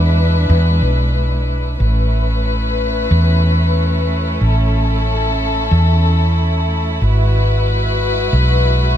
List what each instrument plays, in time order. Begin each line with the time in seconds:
Already playing: fretless electric bass E2, string section G#3 D4 E4 B4
0.50 fretless electric bass E2
0.82 fretless electric bass B1
1.80 fretless electric bass A1, string section A3 C#4 E4 B4
3.11 fretless electric bass E2
4.41 fretless electric bass A1, string section A4
5.71 fretless electric bass E2
7.02 fretless electric bass G#1, string section G#3 F#4 B4
8.33 fretless electric bass B1